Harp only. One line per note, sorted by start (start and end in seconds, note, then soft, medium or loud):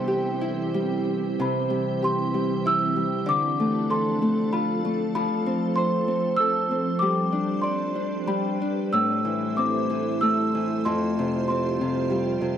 0.00 1.38 C3 medium
0.00 0.73 G3 soft
0.00 1.50 C4 soft
0.00 0.99 D4 soft
0.08 2.02 G4 soft
0.41 2.65 E4 soft
0.74 1.44 G3 soft
1.39 3.33 C3 medium
1.70 2.33 G3 soft
2.02 4.38 G4 soft
2.34 2.95 G3 soft
2.66 4.59 E4 medium
2.96 3.33 G3 medium
3.26 5.20 D3 medium
3.60 4.22 A3 medium
3.90 6.09 A4 medium
4.22 4.84 A3 medium
4.53 7.06 F4 medium
4.85 8.18 A3 medium
5.15 7.05 F3 medium
5.46 6.07 C4 medium
5.77 7.75 C5 medium
6.08 6.70 C4 medium
6.39 8.59 A4 medium
6.71 9.57 C4 medium
7.02 8.26 G3 medium
7.32 7.95 D4 soft
7.63 9.48 D5 medium
7.95 8.61 D4 soft
8.28 8.98 G3 medium
8.62 11.41 D4 soft
8.93 10.91 A2 medium
9.25 9.89 E3 soft
9.58 11.50 C4 medium
9.90 10.53 E3 soft
10.22 12.58 A3 medium
10.55 10.91 E3 soft
10.86 12.58 F2 medium
11.19 11.80 C3 medium
11.50 12.58 C4 medium
11.81 12.40 C3 soft
12.10 12.58 G3 medium
12.41 12.58 C3 soft